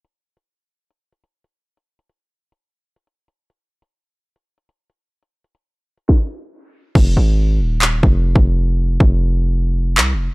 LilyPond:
<<
  \new Staff \with { instrumentName = "808-style bass" } { \clef bass \time 4/4 \key f \minor \tempo 4 = 139 r1 | r1 | r1 | r1 |
f,,8 aes,,4 ees,,4 f,,8. f,,8.~ | f,,8. f,,2~ f,,16 c,16. f,,16. r16 | }
  \new DrumStaff \with { instrumentName = "Drums" } \drummode { \time 4/4 hh8. hh16 r4 hh8 hh16 hh16 r16 hh8. | hh8 hh16 hh16 r8. hh16 r8. hh16 hh8 hh8 | hh8. hh16 r4 hh8 hh16 hh16 r16 hh8. | hh8 hh16 hh16 r8. hh16 <bd sn>4 r4 |
<cymc bd>4 r4 hc8 bd8 r16 bd8. | r8. bd16 r4 r4 hc4 | }
>>